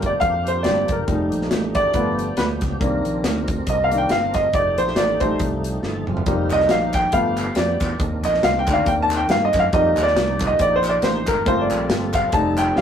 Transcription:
Already playing: G1 F3 G3 A#3 C4 D4 G4
0.02 D5, kick, closed hi-hat
0.20 F2 F5, kick, closed hi-hat
0.47 C5, closed hi-hat
0.63 G1 G3 C4 D4 D5, snare, closed hi-hat
0.88 F#1 A#4, kick, closed hi-hat
1.07 F1 F3 G3 A3 D#4 F4, kick, closed hi-hat
1.13 G4
1.32 A#1, closed hi-hat
1.41 snare
1.51 A1, snare, closed hi-hat
1.75 D5, kick, closed hi-hat
1.94 G1 F3 A3 B3 D4 G4, kick, closed hi-hat
2.19 closed hi-hat
2.37 D2 B4, snare, closed hi-hat
2.61 C#2, kick, snare, closed hi-hat
2.80 C2 C3 D#3 A#3 C4 D4 A#4, kick, closed hi-hat
3.05 A#1, closed hi-hat
3.24 D2, snare, closed hi-hat
3.48 kick, closed hi-hat
3.67 C2 D#5, kick, closed hi-hat
3.84 F5
3.92 D#3 A#3 D4, closed hi-hat
3.98 G5
4.09 G1 F5, snare, closed hi-hat
4.34 D#5, kick, snare, closed hi-hat
4.53 F1 F3 A3 D#4 G4 D5, kick, closed hi-hat
4.78 A#1 C5, closed hi-hat
4.87 snare
4.96 A1 D5, snare, closed hi-hat
5.20 G3 A3 D#4 C5, kick, closed hi-hat
5.39 C2, kick, closed hi-hat
5.64 closed hi-hat
5.83 G1 D#4 A4, snare
5.95 high tom
6.07 F#1 C4 F4, mid tom
6.17 floor tom
6.26 F1 F3 G3 A#3 D#4 G4, kick, closed hi-hat
6.50 C2 D#5, clap, closed hi-hat
6.60 snare
6.69 A#1 F5, snare, closed hi-hat
6.93 G5, kick, clap, closed hi-hat
7.12 G1 F3 A3 B3 D4 G4 F5, kick, closed hi-hat
7.37 clap, closed hi-hat
7.55 F2 D5, snare, closed hi-hat
7.80 E2, kick, snare, clap, closed hi-hat
7.98 D#2 D#3 C4 D4 A4, kick, closed hi-hat
8.04 A#4
8.23 A#1 D#5, clap, closed hi-hat
8.34 snare
8.43 C2 F5, snare, closed hi-hat
8.59 G5
8.67 D2 D#3 A#3 D4, kick, clap, closed hi-hat
8.73 F5
8.86 D#2 G5, kick, closed hi-hat
9.02 A5
9.11 clap, closed hi-hat
9.17 G5
9.28 G2 F5, snare, closed hi-hat
9.45 D#5
9.53 F#2, kick, snare, clap, closed hi-hat
9.59 F5
9.72 F2 F3 G3 A#3 D#4 G4 D#5, kick, closed hi-hat
9.97 D#2, clap, closed hi-hat
10.03 D5
10.07 snare
10.15 C2, snare, closed hi-hat
10.40 kick, clap, closed hi-hat
10.47 D#5
10.59 A#1 D5, kick, closed hi-hat
10.76 C5
10.84 clap, closed hi-hat
10.89 D5
11.02 A1 C5, snare, closed hi-hat
11.27 G#1 A#4, kick, snare, clap, closed hi-hat
11.45 G1 F3 G3 A3 A#3 C4 F4 A4 C5, kick, closed hi-hat
11.61 D5
11.70 A#1, clap, closed hi-hat
11.89 G1, snare, closed hi-hat
12.13 F5, kick, clap, closed hi-hat
12.32 F1 F3 G3 A3 C4 D#4 G#4 A5, kick, closed hi-hat
12.38 A4
12.57 G5, clap, closed hi-hat
12.76 C2 F5, snare

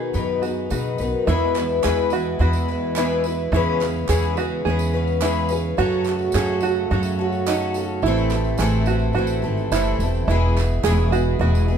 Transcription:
Already playing: B2 D#3 F#3 B3 D#4 F#4 G#4 B4
0.13 F#2 B2 D#3 F#3 B3 D#4 B4, tambourine
0.42 F#3 B3 D#4 F#4 G#4 B4, tambourine
0.70 B2 C#3 F#3 B3 D#4 F#4 B4, tambourine
0.97 B1 D#3 B4, tambourine
1.01 F#3 B3 D#4
1.27 E2 B2 E3 G#3 B3 E4 B4, tambourine
1.55 B3 E4 B4, clap, tambourine
1.69 tambourine
1.83 E2 E3 G#3 B3 E4 G#4 B4, clap, tambourine
1.97 tambourine
2.10 E4 F#4 B4, tambourine
2.15 B3
2.39 E2 G#3 B3 E4 F#4 B4
2.53 tambourine
2.68 B3 E4 B4, tambourine
2.96 E3 G#3 B3 E4 B4, clap, tambourine
3.10 tambourine
3.24 B4, tambourine
3.28 B3 E4
3.52 E2 C#3 E3 G#3 B3 C#4 E4 G#4, tambourine
3.56 B4
3.81 C#4 G#4 B4, clap, tambourine
4.09 E2 E3 G#3 C#4 G#4 B4, clap, tambourine
4.24 tambourine
4.37 C#4 F#4 G#4 B4, tambourine
4.65 E2 G#3 C#4 G#4
4.70 B4
4.79 tambourine
4.93 C#4 G#4 B4, tambourine
5.07 tambourine
5.21 E3 G#3 C#4 E4 G#4 B4, clap, tambourine
5.36 tambourine
5.49 C#4 G#4 B4, tambourine
5.77 F#2 F#3 A3 C#4 F#4 A4, tambourine
6.04 F#4 A4, clap, tambourine
6.09 C#4
6.19 tambourine
6.32 F#2 F#3 C#4 F#4 G#4 A4, clap, tambourine
6.47 tambourine
6.60 F#4 A4, tambourine
6.65 C#4 F#4
6.91 F#2 F#3 C#4 F#4 A4
7.03 tambourine
7.19 C#4 F#4 A4
7.32 tambourine
7.46 F#3 C#4 D#4 F#4 A4, clap, tambourine
7.61 tambourine
7.74 F#4 A4, tambourine
7.79 C#4
8.02 A1 A2 C3 E3 E4, tambourine
8.06 E3 A3 C4 E4 A4
8.16 tambourine
8.30 E4 A4, clap, tambourine
8.34 A3 C4
8.44 tambourine
8.58 A1 A2 E3 A3 C4 G#4, clap, tambourine
8.62 E4 A4
8.86 E4 F#4 A4, tambourine
8.90 A3 C4
8.99 tambourine
9.13 A1 A3 C4 F#4, tambourine
9.18 E4 A4
9.27 tambourine
9.42 G#1 A3 C4 E4 A4, tambourine
9.57 tambourine
9.72 F#1 A2 E3 A3 C4 E4, clap, tambourine
9.76 E4 A4
9.86 tambourine
9.99 E1 E4 A4, tambourine
10.04 A3 C4
10.14 tambourine
10.28 E1 B2 E3 G#3 B3 E4 G#4, tambourine
10.57 B3 E4 G#4, clap, tambourine
10.71 tambourine
10.84 E1 E3 G#3 B3 E4 G#4, clap, tambourine
11.12 B3 E4 F#4 G#4, tambourine
11.39 E1 G#3 B3 E4 F#4 G#4
11.55 tambourine
11.68 B3 E4 G#4, tambourine

